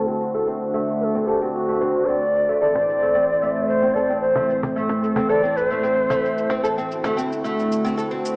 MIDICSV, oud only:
0, 0, Header, 1, 2, 480
1, 0, Start_track
1, 0, Tempo, 535714
1, 426, Time_signature, 4, 2, 24, 8
1, 7491, End_track
2, 0, Start_track
2, 0, Title_t, "Oud"
2, 0, Program_c, 0, 24
2, 68, Note_on_c, 0, 60, 61
2, 297, Note_off_c, 0, 60, 0
2, 307, Note_on_c, 0, 57, 64
2, 418, Note_off_c, 0, 57, 0
2, 424, Note_on_c, 0, 60, 65
2, 544, Note_off_c, 0, 60, 0
2, 662, Note_on_c, 0, 57, 68
2, 1017, Note_off_c, 0, 57, 0
2, 1029, Note_on_c, 0, 60, 80
2, 1137, Note_off_c, 0, 60, 0
2, 1140, Note_on_c, 0, 69, 64
2, 1262, Note_off_c, 0, 69, 0
2, 1269, Note_on_c, 0, 60, 64
2, 1498, Note_off_c, 0, 60, 0
2, 1510, Note_on_c, 0, 57, 67
2, 1619, Note_off_c, 0, 57, 0
2, 1622, Note_on_c, 0, 60, 90
2, 1737, Note_off_c, 0, 60, 0
2, 1865, Note_on_c, 0, 60, 67
2, 1978, Note_off_c, 0, 60, 0
2, 2228, Note_on_c, 0, 57, 62
2, 2333, Note_off_c, 0, 57, 0
2, 2344, Note_on_c, 0, 69, 69
2, 2464, Note_off_c, 0, 69, 0
2, 2467, Note_on_c, 0, 60, 68
2, 2697, Note_off_c, 0, 60, 0
2, 2709, Note_on_c, 0, 57, 60
2, 2819, Note_off_c, 0, 57, 0
2, 2822, Note_on_c, 0, 60, 72
2, 2943, Note_off_c, 0, 60, 0
2, 3065, Note_on_c, 0, 57, 67
2, 3418, Note_off_c, 0, 57, 0
2, 3428, Note_on_c, 0, 60, 83
2, 3539, Note_off_c, 0, 60, 0
2, 3545, Note_on_c, 0, 69, 66
2, 3664, Note_off_c, 0, 69, 0
2, 3673, Note_on_c, 0, 60, 67
2, 3900, Note_off_c, 0, 60, 0
2, 3911, Note_on_c, 0, 57, 65
2, 4020, Note_off_c, 0, 57, 0
2, 4027, Note_on_c, 0, 60, 65
2, 4146, Note_off_c, 0, 60, 0
2, 4265, Note_on_c, 0, 57, 73
2, 4618, Note_off_c, 0, 57, 0
2, 4629, Note_on_c, 0, 60, 82
2, 4739, Note_off_c, 0, 60, 0
2, 4743, Note_on_c, 0, 69, 74
2, 4863, Note_off_c, 0, 69, 0
2, 4870, Note_on_c, 0, 60, 63
2, 5098, Note_off_c, 0, 60, 0
2, 5111, Note_on_c, 0, 57, 64
2, 5220, Note_off_c, 0, 57, 0
2, 5225, Note_on_c, 0, 60, 68
2, 5345, Note_off_c, 0, 60, 0
2, 5468, Note_on_c, 0, 57, 71
2, 5820, Note_off_c, 0, 57, 0
2, 5830, Note_on_c, 0, 60, 86
2, 5939, Note_off_c, 0, 60, 0
2, 5946, Note_on_c, 0, 69, 68
2, 6065, Note_off_c, 0, 69, 0
2, 6074, Note_on_c, 0, 60, 64
2, 6187, Note_off_c, 0, 60, 0
2, 6310, Note_on_c, 0, 57, 68
2, 6420, Note_off_c, 0, 57, 0
2, 6424, Note_on_c, 0, 60, 64
2, 6544, Note_off_c, 0, 60, 0
2, 6668, Note_on_c, 0, 57, 74
2, 7020, Note_off_c, 0, 57, 0
2, 7029, Note_on_c, 0, 60, 84
2, 7139, Note_off_c, 0, 60, 0
2, 7144, Note_on_c, 0, 69, 66
2, 7264, Note_off_c, 0, 69, 0
2, 7267, Note_on_c, 0, 60, 65
2, 7491, Note_off_c, 0, 60, 0
2, 7491, End_track
0, 0, End_of_file